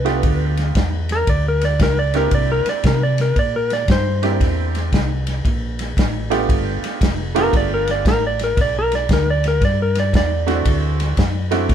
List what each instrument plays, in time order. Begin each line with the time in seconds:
Already playing: fingered electric bass C2, electric slide guitar B4
0.05 upright piano A3 B3 D4 F4 G4, snare, ride
0.23 fingered electric bass D2, kick, ride
0.57 snare, ride
0.75 fingered electric bass E2, kick, snare, ride
1.09 electric slide guitar A#4, snare, ride
1.27 fingered electric bass D2, electric slide guitar D5, kick, ride
1.48 electric slide guitar A#4
1.61 electric slide guitar D5, snare, ride
1.80 fingered electric bass C#2, electric slide guitar A#4, kick, snare, ride
1.99 electric slide guitar D5
2.14 upright piano A#3 C4 D4 E4 G4, electric slide guitar A#4, snare, ride
2.31 fingered electric bass C2, electric slide guitar D5, kick, ride
2.52 electric slide guitar A#4
2.66 electric slide guitar D5, snare, ride
2.84 fingered electric bass C3, electric slide guitar A#4, kick, snare, ride
3.03 electric slide guitar D5
3.18 electric slide guitar A#4, snare, ride
3.36 fingered electric bass A#2, electric slide guitar D5, kick, ride
3.56 electric slide guitar A#4
3.70 electric slide guitar D5, snare, ride
3.88 fingered electric bass G2, electric slide guitar C5, kick, snare, ride
4.22 upright piano A#3 C4 D4 E4 G4, snare, ride
4.40 fingered electric bass E2, kick, snare, ride
4.75 snare, ride
4.93 fingered electric bass C2, kick, snare, ride
5.27 snare, ride
5.45 fingered electric bass A#1, kick, ride
5.79 snare, ride
5.97 fingered electric bass A1, kick, snare, ride
6.30 upright piano A3 B3 D4 F4 G4, snare, ride
6.49 fingered electric bass G1, kick, ride
6.82 muted fingered electric bass stroke, snare, ride
7.01 fingered electric bass F1, kick, snare, ride
7.35 upright piano A3 B3 D4 F4 G4, electric slide guitar A#4, snare, ride
7.53 fingered electric bass G1, kick, snare, ride
7.57 electric slide guitar D5
7.74 electric slide guitar A#4
7.88 electric slide guitar D5, snare, ride
8.05 fingered electric bass A1, electric slide guitar A#4, kick, snare, ride
8.27 electric slide guitar D5
8.39 snare, ride
8.44 electric slide guitar A#4
8.57 fingered electric bass B1, kick, snare, ride
8.61 electric slide guitar D5
8.79 electric slide guitar A#4
8.92 electric slide guitar D5, snare, ride
9.09 fingered electric bass D2, kick, snare, ride
9.13 electric slide guitar A#4
9.30 electric slide guitar D5
9.44 electric slide guitar A#4, snare, ride
9.61 fingered electric bass G2, electric slide guitar D5, kick, snare, ride
9.82 electric slide guitar A#4
9.95 snare, ride
10.00 electric slide guitar D5
10.13 fingered electric bass E2, electric slide guitar D5, kick, snare, ride
10.47 upright piano A3 C4 D4 E4 F#4, snare, ride
10.65 fingered electric bass D2, kick, ride
11.00 snare, ride
11.17 fingered electric bass F#2, kick, snare, ride
11.51 upright piano A3 C4 D4 E4 F#4, snare, ride
11.69 fingered electric bass A2, kick, snare, ride